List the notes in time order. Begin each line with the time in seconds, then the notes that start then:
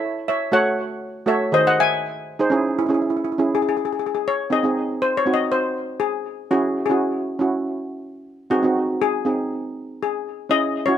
Already playing: E4 A4 C#5
0.28 C#5 E5
0.52 A3 F#4 A4 C#5 F#5
1.26 A3 F#4 A4 C#5 E5
1.52 D#3 G#4 C5 D#5
1.67 D#5 F#5
1.80 E5 G#5
2.39 D#4 G#4 C5
2.50 C#4 E4 G#4
2.79 E4
2.86 C#4 E4
2.90 G#4
2.94 E4
3.02 E4
3.10 E4
3.17 E4
3.25 E4
3.32 E4
3.38 C#4 E4 G#4
3.55 G#4
3.62 G#4
3.69 G#4
3.77 G#4
3.85 G#4
3.92 G#4
3.99 G#4
4.06 G#4
4.15 G#4
4.28 C#5
4.50 C4 D#4 G#4 D#5
4.63 C4 D#4 G#4
5.02 C5
5.17 C#5
5.26 C4 D#4 F#4
5.34 D#5
5.52 C5
6.00 G#4
6.51 C#4 E4 F#4 G#4
6.86 C#4 G#4
6.90 E4 F#4
7.39 C#4 E4 F#4
8.50 C4 D#4 F#4 G#4
8.63 C4 D#4 F#4
9.02 G#4
9.25 C4 D#4 G#4
10.03 G#4
10.49 C#4 E4 G#4 D#5
10.86 C#4 E4 F#4 C#5